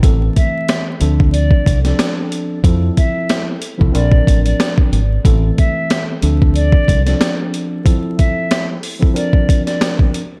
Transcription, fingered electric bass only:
X:1
M:4/4
L:1/16
Q:"Swing 16ths" 1/4=92
K:Am
V:1 name="Fingered electric bass" clef=bass
A,,,2 z4 D,,4 C,,2 z4 | F,,2 z4 z C,, _B,,,2 A,,,2 z2 ^G,,,2 | A,,,2 z4 D,,4 C,,2 z4 | z16 |]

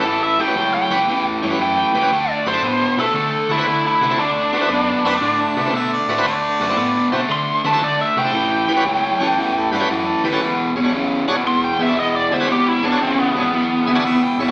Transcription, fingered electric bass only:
X:1
M:4/4
L:1/8
Q:"Swing" 1/4=116
K:Amix
V:1 name="Fingered electric bass" clef=bass
A,,,2 C,, C,, E,, G,, F,, C,, | D,, F,, A,, B,, D, D, D, =C, | D,,2 F,, F,, A,, =C, B,, A,, | D,, F,, A,, B,, D, D, D, =C, |
A,,,2 C,, C,, E,, G,, F,, D,, | E,,, ^G,,, B,,, C,, E,, E,, E,, D,, | E,,,2 ^G,,, G,,, B,,, D,, C,, G,,, |]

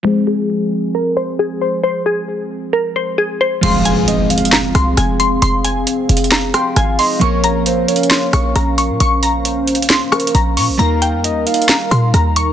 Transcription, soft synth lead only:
X:1
M:4/4
L:1/8
Q:1/4=134
K:Fm
V:1 name="Soft synth lead"
z8 | z8 | f2 e f3 z2 | z4 z g f e |
d2 c d3 z2 | z4 z B z2 | f2 e f3 z2 |]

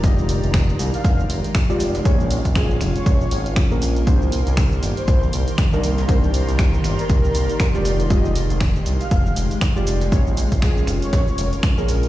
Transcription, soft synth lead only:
X:1
M:4/4
L:1/16
Q:"Swing 16ths" 1/4=119
K:Fdor
V:1 name="Soft synth lead"
z6 z f3 z6 | z4 A z2 _d4 z4 z | z6 z c3 z4 z B | z6 z B6 z3 |
z6 z f3 z6 | z4 A z2 _d4 z4 z |]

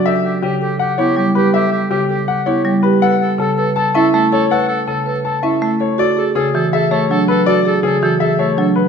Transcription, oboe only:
X:1
M:4/4
L:1/8
Q:1/4=162
K:F#phr
V:1 name="Oboe"
G G G G G G G G | G G G G G G G z | A A A A A A A A | A A A A A A A z |
[K:Bdor] A A A A A A A A | A A A A A A A z |]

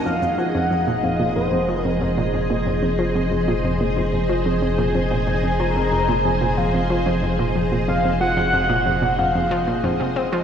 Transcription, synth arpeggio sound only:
X:1
M:4/4
L:1/16
Q:1/4=92
K:Fphr
V:1 name="Synth arpeggio sound" clef=bass
F,, F,, F, F,, F,, B,, F,, B,, F,, F,, F, F,, F,, B,, F,, B,, | F,, F,, F, F,, F,, B,, F,, B,, F,, F,, F, F,, F,, B,, F,, B,, | F,, F,, F, F,, F,, B,, F,, B,, F,, F,, F, F,, F,, B,, F,, B,, | F,, F,, F, F,, F,, B,, F,, B,, F,, F,, F, B,, F,, C, C F, |]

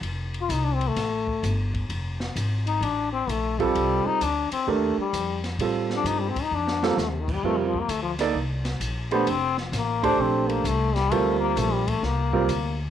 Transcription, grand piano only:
X:1
M:4/4
L:1/8
Q:"Swing" 1/4=130
K:Fmix
V:1 name="Grand piano"
z8 | z6 z [G,CFA]- | [G,CFA]2 z2 [A,DGB] z3 | [G,CFA]3 z2 [G,CFA] z2 |
[G,CFB] z2 [B,EAd] z3 [A,DGc] | z3 [A,DGc]3 z2 | [G,CFB]3 z2 [G,CFB] z2 |]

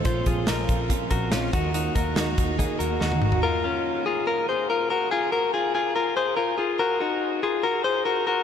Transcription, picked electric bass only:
X:1
M:4/4
L:1/16
Q:1/4=143
K:Bbm
V:1 name="Picked electric bass" clef=bass
B,,,2 B,,,2 B,,,2 B,,,3 z B,,,2 B,,,2 E,,2- | E,,2 E,,2 E,,2 E,,3 z E,,2 E,,2 A,,,2 | z16 | z16 |
z16 |]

